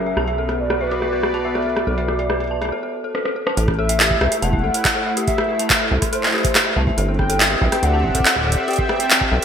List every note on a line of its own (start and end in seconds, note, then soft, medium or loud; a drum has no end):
0.00 0.15 F#1 medium
0.00 0.17 F#3 medium
0.00 0.17 C#4 medium
0.00 0.17 G#4 medium
0.00 0.17 A#4 medium
0.00 0.61 E5 loud
0.06 0.15 E5 medium
0.17 1.85 B1 medium
0.17 2.72 B3 medium
0.17 0.26 A5 medium
0.17 cross-stick medium
0.28 0.36 E5 medium
0.28 closed hi-hat soft
0.38 0.47 A4 medium
0.46 2.72 F#4 medium
0.46 0.58 A4 medium
0.46 2.72 B4 medium
0.46 cross-stick medium
0.46 closed hi-hat medium
0.59 2.72 D5 medium
0.59 0.82 D5 medium
0.70 0.75 A4 loud
0.70 cross-stick medium
0.81 1.44 B4 medium
0.81 0.86 E5 medium
0.91 1.01 F#4 loud
0.91 closed hi-hat medium
1.02 1.07 E5 medium
1.02 cross-stick medium
1.13 1.21 B4 medium
1.23 1.32 E5 medium
1.23 cross-stick medium
1.34 1.43 A5 medium
1.34 closed hi-hat medium
1.45 1.53 E5 medium
1.45 1.89 E5 loud
1.55 1.64 A4 medium
1.55 cross-stick soft
1.55 closed hi-hat soft
1.62 1.75 A4 medium
1.62 closed hi-hat soft
1.69 closed hi-hat soft
1.76 cross-stick medium
1.76 closed hi-hat medium
1.87 2.72 B1 medium
1.87 1.92 A4 loud
1.87 2.72 D5 loud
1.98 2.03 E5 medium
1.98 closed hi-hat soft
2.08 2.18 F#4 loud
2.08 cross-stick medium
2.19 2.24 E5 medium
2.19 closed hi-hat medium
2.30 2.38 B4 medium
2.30 cross-stick medium
2.40 2.49 E5 medium
2.40 closed hi-hat soft
2.44 closed hi-hat soft
2.47 2.60 A5 medium
2.47 closed hi-hat soft
2.62 2.70 E5 medium
2.62 cross-stick medium
2.62 closed hi-hat medium
2.65 cross-stick soft
2.69 2.81 A4 medium
2.69 cross-stick soft
2.83 2.92 A4 medium
3.04 3.13 A4 medium
3.15 3.20 A4 medium
3.15 cross-stick medium
3.25 3.34 A4 medium
3.25 cross-stick medium
3.36 3.45 A4 medium
3.47 3.55 A5 medium
3.47 cross-stick medium
3.57 4.16 A1 loud
3.57 6.98 A3 medium
3.57 3.66 A4 medium
3.57 closed hi-hat medium
3.68 kick loud
3.68 cross-stick medium
3.73 8.34 E4 medium
3.79 3.84 A4 loud
3.79 4.44 E5 loud
3.89 3.94 E5 medium
3.89 closed hi-hat medium
4.00 4.10 G4 loud
4.00 clap loud
4.00 closed hi-hat medium
4.11 4.16 E5 medium
4.11 kick loud
4.21 4.29 C2 medium
4.21 4.30 B4 medium
4.21 cross-stick medium
4.32 4.41 E5 medium
4.32 closed hi-hat medium
4.42 4.65 E1 loud
4.42 5.27 F#5 loud
4.42 4.51 A5 medium
4.42 closed hi-hat medium
4.53 4.62 E5 medium
4.53 kick loud
4.64 4.71 A1 medium
4.64 4.72 A4 medium
4.74 4.83 A4 medium
4.74 closed hi-hat medium
4.85 kick loud
4.85 cross-stick medium
4.85 clap loud
4.85 closed hi-hat medium
4.96 5.01 A4 loud
5.06 5.11 E5 medium
5.17 5.27 G4 loud
5.17 closed hi-hat medium
5.28 5.33 E5 medium
5.28 5.87 E5 loud
5.28 kick loud
5.28 closed hi-hat medium
5.38 5.47 B4 medium
5.38 cross-stick medium
5.49 5.58 E5 medium
5.59 5.68 A5 medium
5.59 closed hi-hat medium
5.70 5.79 E5 medium
5.70 kick loud
5.70 clap loud
5.70 closed hi-hat medium
5.81 5.89 A4 medium
5.91 5.99 C2 medium
5.91 6.00 A4 medium
6.02 kick loud
6.02 cross-stick medium
6.02 closed hi-hat medium
6.13 6.18 A4 loud
6.13 6.72 C5 medium
6.13 closed hi-hat medium
6.23 6.29 E5 medium
6.23 clap medium
6.26 clap soft
6.29 clap soft
6.31 6.44 G4 loud
6.31 clap soft
6.34 clap soft
6.37 clap soft
6.39 clap soft
6.42 6.50 E5 medium
6.42 kick loud
6.42 clap soft
6.42 closed hi-hat medium
6.55 6.64 B4 medium
6.55 cross-stick medium
6.55 clap loud
6.55 closed hi-hat medium
6.66 6.75 E5 medium
6.76 6.91 C2 medium
6.76 6.85 A5 medium
6.87 6.96 E5 medium
6.87 kick loud
6.98 7.56 G1 loud
6.98 9.45 C4 medium
6.98 7.06 A4 medium
6.98 closed hi-hat medium
7.08 9.45 G4 medium
7.08 7.17 A4 medium
7.19 7.84 G5 medium
7.19 kick loud
7.19 cross-stick medium
7.30 7.35 A4 loud
7.30 closed hi-hat medium
7.38 9.45 D5 medium
7.38 7.46 E5 medium
7.38 clap loud
7.38 closed hi-hat medium
7.51 7.61 G4 loud
7.59 7.69 B1 medium
7.59 9.45 E5 medium
7.59 7.67 E5 medium
7.59 kick loud
7.72 7.81 B4 medium
7.72 cross-stick medium
7.72 closed hi-hat medium
7.83 8.06 D2 loud
7.83 7.92 E5 medium
7.83 8.69 F#5 loud
7.83 closed hi-hat medium
7.93 8.02 A5 medium
8.04 8.12 G1 medium
8.04 8.13 E5 medium
8.04 kick medium
8.09 kick medium
8.15 8.23 A4 medium
8.15 kick medium
8.15 closed hi-hat medium
8.20 kick loud
8.25 8.34 A4 medium
8.25 clap loud
8.25 closed hi-hat medium
8.36 kick soft
8.36 cross-stick soft
8.39 kick medium
8.41 kick medium
8.44 kick medium
8.47 8.52 A4 loud
8.47 kick medium
8.49 kick medium
8.52 kick medium
8.52 closed hi-hat medium
8.55 8.63 E5 medium
8.55 kick loud
8.68 8.78 G4 loud
8.68 9.32 G5 loud
8.68 closed hi-hat soft
8.71 closed hi-hat soft
8.73 closed hi-hat soft
8.76 8.84 E5 medium
8.76 kick loud
8.76 closed hi-hat soft
8.89 8.98 B4 medium
8.89 cross-stick medium
9.00 9.09 E5 medium
9.00 closed hi-hat medium
9.11 9.19 A5 medium
9.11 clap loud
9.11 closed hi-hat medium
9.21 9.30 E5 medium
9.21 kick loud
9.32 9.39 B1 medium
9.32 9.41 A4 medium